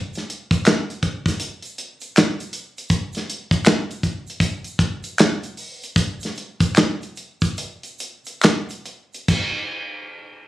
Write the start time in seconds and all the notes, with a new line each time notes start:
0.14 snare, closed hi-hat, shaker
0.30 closed hi-hat
0.51 kick, closed hi-hat, shaker
0.65 finger snap, snare, clap, closed hi-hat, shaker
0.90 closed hi-hat, shaker
1.03 kick, closed hi-hat, shaker
1.26 kick, snare, closed hi-hat, shaker
1.40 closed hi-hat, shaker
1.62 closed hi-hat, shaker
1.78 closed hi-hat
2.01 closed hi-hat, shaker
2.16 finger snap, snare, clap, closed hi-hat, shaker
2.40 closed hi-hat, shaker
2.53 closed hi-hat, shaker
2.78 closed hi-hat, shaker
2.89 kick, closed hi-hat, shaker
3.13 closed hi-hat, shaker
3.17 snare
3.30 closed hi-hat
3.51 kick, closed hi-hat, shaker
3.65 finger snap, snare, clap, closed hi-hat, shaker
3.91 closed hi-hat, shaker
4.03 kick, closed hi-hat, shaker
4.27 closed hi-hat, shaker
4.40 kick, closed hi-hat, shaker
4.64 closed hi-hat, shaker
4.79 kick, closed hi-hat
5.04 closed hi-hat, shaker
5.18 finger snap, snare, clap, closed hi-hat, shaker
5.43 closed hi-hat, shaker
5.57 open hi-hat, shaker
5.83 closed hi-hat, shaker
5.96 kick, closed hi-hat, shaker
6.20 closed hi-hat, shaker
6.25 snare
6.35 closed hi-hat, shaker
6.60 kick, closed hi-hat, shaker
6.75 finger snap, snare, clap, closed hi-hat, shaker
7.02 closed hi-hat, shaker
7.16 closed hi-hat, shaker
7.41 kick, closed hi-hat, shaker
7.57 closed hi-hat, shaker
7.83 closed hi-hat, shaker
7.99 closed hi-hat, shaker
8.25 closed hi-hat, shaker
8.41 finger snap, snare, clap, closed hi-hat, shaker
8.69 closed hi-hat, shaker
8.85 closed hi-hat, shaker
9.14 closed hi-hat, shaker
9.28 kick, crash, shaker